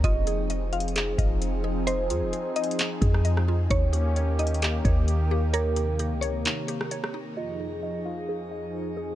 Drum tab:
HH |x-----x-----x-----x-x-x-x-----x-----x-----------|x-----x-----x-----x-x-x-x-----x-----x-----------|x-----x-----x-----x-x-x-x-----x-----x-----------|x-----x-----x-----x-----x-----x-----x-----------|
CP |------------------------x-----------------------|------------------------x-----------------------|------------------------x-----------------------|------------------------x-----------------------|
SD |------------------------------------------------|---------------------------------r-----r--------|------------------------------------------------|---------------------------------r-----r--------|
BD |o-----------------------------o-----------------|------------------------------o-----------------|o-----------------------------o-----------------|------------------------------------------------|

HH |------------------------------------------------|
CP |------------------------------------------------|
SD |------------------------------------------------|
BD |------------------------------------------------|